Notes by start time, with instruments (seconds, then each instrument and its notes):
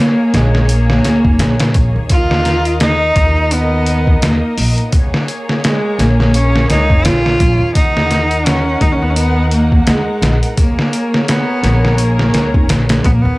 Already playing: cello A#3, violin section A#3 G#4 C#5
0.34 upright bass A#1, cello G#3, snare, closed hi-hat
0.55 snare
0.69 cello A#3, closed hi-hat
0.90 snare
1.04 upright bass C#2, snare, closed hi-hat
1.25 upright bass F1, kick
1.39 upright bass A#1, snare, closed hi-hat
1.60 snare, closed hi-hat
1.74 upright bass A#1, kick, closed hi-hat
1.96 upright bass D#2
2.09 violin section D#4 A#4 D#5, cello F4, kick, closed hi-hat
2.31 snare
2.45 snare, closed hi-hat
2.65 closed hi-hat
2.80 cello D#4, snare, closed hi-hat
3.16 upright bass D#2, kick, closed hi-hat
3.51 cello B3, closed hi-hat
3.86 closed hi-hat
4.07 kick
4.22 upright bass D#2, cello A#3, snare, closed hi-hat
4.58 upright bass A#1, open hi-hat
4.78 closed hi-hat
4.93 violin section A#3 G#4 C#5, kick, closed hi-hat
5.14 snare
5.28 closed hi-hat
5.49 snare
5.64 cello G#3, snare, closed hi-hat
5.99 upright bass A#1, cello A#3, snare, closed hi-hat
6.20 snare
6.34 cello C#4, closed hi-hat
6.56 snare
6.69 upright bass C#2, cello D#4, snare, closed hi-hat
6.90 upright bass F1, kick
7.05 upright bass A#1, cello F4, snare, closed hi-hat
7.26 snare
7.40 upright bass A#1, kick, closed hi-hat
7.60 upright bass D#2
7.75 cello D#4, violin section D#4 A#4 F#5, kick, closed hi-hat
7.97 snare
8.11 snare, closed hi-hat
8.31 closed hi-hat
8.46 cello C#4, snare, closed hi-hat
8.81 upright bass D#2, cello D#4, kick, closed hi-hat
8.92 cello C#4
9.03 cello B3
9.10 cello C#4
9.16 cello B3, closed hi-hat
9.51 cello A#3, closed hi-hat
9.72 kick
9.87 upright bass D#2, cello G#3, snare, closed hi-hat
10.22 upright bass A#1, snare, closed hi-hat
10.43 closed hi-hat
10.57 cello A#3, violin section G#4 A#4 C#5, kick, closed hi-hat
10.79 snare
10.93 closed hi-hat
11.14 snare
11.28 cello B3, snare, closed hi-hat
11.63 upright bass A#1, snare, closed hi-hat
11.85 snare
11.98 cello A#3, closed hi-hat
12.19 snare
12.34 upright bass C#2, snare, closed hi-hat
12.54 upright bass F1, kick
12.69 upright bass A#1, snare, closed hi-hat
12.89 snare, closed hi-hat
13.04 upright bass A#1, cello B3, kick, closed hi-hat
13.14 cello A#3
13.22 upright bass D#2, cello B3